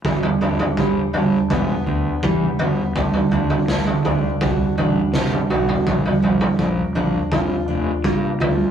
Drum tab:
SD |----------------|----o-------o---|----------------|
T2 |---oo-----------|---oo-o------o--|---oo-----------|
FT |oooo--o-o-----o-|oooo-oo-o-o---oo|oooo--o-o-----o-|
BD |o---o---o---o---|o---o---o---o---|o---o---o---o---|